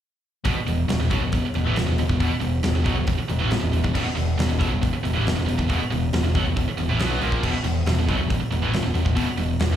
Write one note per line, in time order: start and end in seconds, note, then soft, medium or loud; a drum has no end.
0.44 0.55 E1 medium
0.44 0.54 E2 medium
0.44 0.55 B2 loud
0.44 kick loud
0.44 open hi-hat medium
0.56 muted overdriven electric guitar stroke medium
0.56 muted distorted electric guitar stroke medium
0.56 muted fingered electric bass stroke soft
0.66 0.88 E1 medium
0.66 0.84 E2 medium
0.66 0.84 B2 medium
0.66 open hi-hat medium
0.88 0.99 E1 medium
0.88 0.98 E2 medium
0.88 0.98 B2 medium
0.88 snare loud
0.88 open hi-hat medium
0.99 1.10 E1 medium
0.99 1.11 E2 medium
0.99 1.08 B2 medium
1.09 1.21 B1 medium
1.09 1.19 B2 medium
1.09 1.21 F#3 loud
1.09 kick medium
1.09 open hi-hat medium
1.20 1.32 E1 medium
1.20 1.31 E2 medium
1.20 1.31 B2 medium
1.32 1.43 E1 medium
1.32 1.41 E2 medium
1.32 1.44 B2 medium
1.32 kick loud
1.32 open hi-hat medium
1.42 muted overdriven electric guitar stroke medium
1.42 muted fingered electric bass stroke soft
1.42 muted distorted electric guitar stroke medium
1.54 1.65 E1 medium
1.54 1.65 E2 medium
1.54 1.64 B2 medium
1.54 open hi-hat medium
1.64 1.76 A1 medium
1.64 1.75 A2 medium
1.64 1.76 E3 loud
1.76 1.87 E1 medium
1.76 1.86 E2 medium
1.76 1.86 B2 medium
1.76 snare loud
1.76 open hi-hat medium
1.87 1.98 E1 medium
1.87 1.97 E2 medium
1.87 1.98 B2 medium
1.98 2.09 E1 medium
1.98 2.08 E2 medium
1.98 2.08 B2 medium
1.98 open hi-hat medium
2.09 2.20 E1 medium
2.09 2.19 E2 medium
2.09 2.19 B2 medium
2.09 kick medium
2.20 2.31 E1 loud
2.20 2.29 E2 medium
2.20 2.31 B2 loud
2.20 kick medium
2.20 open hi-hat medium
2.30 muted distorted electric guitar stroke medium
2.30 muted overdriven electric guitar stroke medium
2.30 muted fingered electric bass stroke soft
2.41 2.62 E1 medium
2.41 2.59 E2 medium
2.41 2.59 B2 medium
2.41 open hi-hat medium
2.63 2.75 E1 medium
2.63 2.72 E2 medium
2.63 2.73 B2 medium
2.63 snare loud
2.63 open hi-hat medium
2.74 2.85 E1 medium
2.74 2.85 E2 medium
2.74 2.84 B2 medium
2.85 2.96 B1 loud
2.85 2.96 B2 loud
2.85 2.96 F#3 loud
2.85 kick medium
2.85 open hi-hat medium
2.96 3.07 E1 medium
2.96 3.06 E2 medium
2.96 3.07 B2 medium
3.07 3.18 E1 medium
3.07 3.18 E2 medium
3.07 3.19 B2 medium
3.07 kick loud
3.07 open hi-hat medium
3.18 muted distorted electric guitar stroke medium
3.18 muted fingered electric bass stroke soft
3.18 muted overdriven electric guitar stroke medium
3.29 3.40 E1 medium
3.29 3.41 E2 medium
3.29 3.41 B2 medium
3.29 open hi-hat medium
3.41 3.51 A1 loud
3.41 3.51 A2 medium
3.41 3.51 E3 loud
3.51 3.62 E1 medium
3.51 3.61 E2 medium
3.51 3.61 B2 medium
3.51 snare loud
3.51 open hi-hat medium
3.62 3.73 E1 medium
3.62 3.72 E2 medium
3.62 3.73 B2 medium
3.73 3.84 E1 medium
3.73 3.83 E2 medium
3.73 3.83 B2 medium
3.73 open hi-hat medium
3.84 3.94 E1 medium
3.84 3.92 E2 medium
3.84 3.93 B2 medium
3.84 kick medium
3.93 4.05 E1 loud
3.93 4.03 E2 medium
3.93 4.05 B2 loud
3.93 kick medium
3.93 crash medium
4.04 muted distorted electric guitar stroke medium
4.04 muted overdriven electric guitar stroke medium
4.04 muted fingered electric bass stroke soft
4.15 4.37 E1 medium
4.15 4.33 E2 medium
4.15 4.34 B2 medium
4.15 open hi-hat medium
4.38 4.49 E1 medium
4.38 4.47 E2 medium
4.38 4.47 B2 medium
4.38 snare loud
4.38 open hi-hat medium
4.48 4.60 E1 medium
4.48 4.60 E2 medium
4.48 4.57 B2 medium
4.59 4.71 B1 medium
4.59 4.69 B2 loud
4.59 4.70 F#3 loud
4.59 kick medium
4.59 open hi-hat medium
4.70 4.82 E1 medium
4.70 4.80 E2 medium
4.70 4.81 B2 medium
4.81 4.93 E1 medium
4.81 4.92 E2 medium
4.81 4.93 B2 medium
4.81 kick loud
4.81 open hi-hat medium
4.93 muted overdriven electric guitar stroke medium
4.93 muted distorted electric guitar stroke medium
4.93 muted fingered electric bass stroke soft
5.04 5.15 E1 medium
5.04 5.15 E2 medium
5.04 5.15 B2 medium
5.04 open hi-hat medium
5.16 5.26 A1 medium
5.16 5.25 A2 medium
5.16 5.26 E3 loud
5.26 5.36 E1 medium
5.26 5.37 E2 medium
5.26 5.37 B2 medium
5.26 snare loud
5.26 open hi-hat medium
5.38 5.48 E1 medium
5.38 5.47 E2 medium
5.38 5.47 B2 medium
5.49 5.58 E1 medium
5.49 5.57 E2 medium
5.49 5.59 B2 medium
5.49 open hi-hat medium
5.59 5.69 E1 medium
5.59 5.68 E2 medium
5.59 5.69 B2 medium
5.59 kick medium
5.69 5.79 E1 medium
5.69 5.79 E2 medium
5.69 5.80 B2 medium
5.69 kick medium
5.69 open hi-hat medium
5.79 muted distorted electric guitar stroke medium
5.79 muted overdriven electric guitar stroke medium
5.79 muted fingered electric bass stroke soft
5.92 6.12 E1 medium
5.92 6.09 E2 medium
5.92 6.09 B2 medium
5.92 open hi-hat medium
6.13 6.23 E1 medium
6.13 6.22 E2 medium
6.13 6.23 B2 medium
6.13 snare loud
6.13 open hi-hat medium
6.23 6.34 E1 medium
6.23 6.34 E2 medium
6.23 6.34 B2 medium
6.35 6.45 B1 medium
6.35 6.44 B2 medium
6.35 6.45 F#3 loud
6.35 kick medium
6.35 open hi-hat medium
6.45 6.55 E1 medium
6.45 6.55 E2 medium
6.45 6.56 B2 medium
6.56 6.67 E1 medium
6.56 6.66 E2 medium
6.56 6.67 B2 medium
6.56 kick loud
6.56 open hi-hat medium
6.68 muted overdriven electric guitar stroke medium
6.68 muted distorted electric guitar stroke medium
6.68 muted fingered electric bass stroke soft
6.78 6.89 E1 medium
6.78 6.89 E2 medium
6.78 6.90 B2 medium
6.78 open hi-hat medium
6.89 6.99 A1 loud
6.89 7.00 A2 medium
6.89 7.00 E3 medium
7.00 7.20 B1 medium
7.00 7.21 B2 medium
7.00 7.21 F#3 medium
7.00 7.21 B3 loud
7.00 snare loud
7.00 open hi-hat medium
7.21 7.42 A#1 medium
7.21 7.42 A#2 medium
7.21 7.43 F3 medium
7.21 7.43 A#3 medium
7.21 open hi-hat medium
7.32 kick medium
7.43 7.53 E1 medium
7.43 7.52 E2 medium
7.43 7.53 B2 loud
7.43 kick medium
7.43 crash medium
7.53 muted distorted electric guitar stroke medium
7.53 muted fingered electric bass stroke soft
7.53 muted overdriven electric guitar stroke medium
7.64 7.85 E1 medium
7.64 7.82 E2 medium
7.64 7.82 B2 medium
7.64 open hi-hat medium
7.86 7.96 E1 medium
7.86 7.98 E2 medium
7.86 7.98 B2 medium
7.86 snare loud
7.86 open hi-hat medium
7.96 8.07 E1 medium
7.96 8.09 E2 medium
7.96 8.08 B2 medium
8.08 8.18 B1 medium
8.08 8.19 B2 medium
8.08 8.19 F#3 loud
8.08 kick medium
8.08 open hi-hat medium
8.19 8.29 E1 medium
8.19 8.30 E2 medium
8.19 8.31 B2 medium
8.30 8.39 E1 medium
8.30 8.41 E2 medium
8.30 8.42 B2 medium
8.30 kick loud
8.30 open hi-hat medium
8.40 muted fingered electric bass stroke soft
8.40 muted distorted electric guitar stroke medium
8.40 muted overdriven electric guitar stroke medium
8.51 8.61 E1 medium
8.51 8.63 E2 medium
8.51 8.63 B2 medium
8.51 open hi-hat medium
8.61 8.72 A1 medium
8.61 8.73 A2 medium
8.61 8.73 E3 medium
8.73 8.83 E1 medium
8.73 8.83 E2 medium
8.73 8.83 B2 medium
8.73 snare loud
8.73 open hi-hat medium
8.84 8.94 E1 medium
8.84 8.94 E2 medium
8.84 8.95 B2 medium
8.95 9.05 E1 medium
8.95 9.05 E2 medium
8.95 9.05 B2 medium
8.95 open hi-hat medium
9.06 9.16 E1 medium
9.06 9.15 E2 medium
9.06 9.16 B2 medium
9.06 kick medium
9.16 9.27 E1 medium
9.16 9.26 E2 medium
9.16 9.27 B2 loud
9.16 kick medium
9.16 open hi-hat medium
9.27 muted distorted electric guitar stroke medium
9.27 muted fingered electric bass stroke soft
9.27 muted overdriven electric guitar stroke medium
9.38 9.58 E1 medium
9.38 9.55 E2 medium
9.38 9.55 B2 medium
9.38 open hi-hat medium
9.59 9.70 E1 medium
9.59 9.70 E2 medium
9.59 9.71 B2 medium
9.59 snare loud
9.59 open hi-hat medium
9.70 9.76 E1 medium
9.70 9.76 E2 medium
9.70 9.76 B2 medium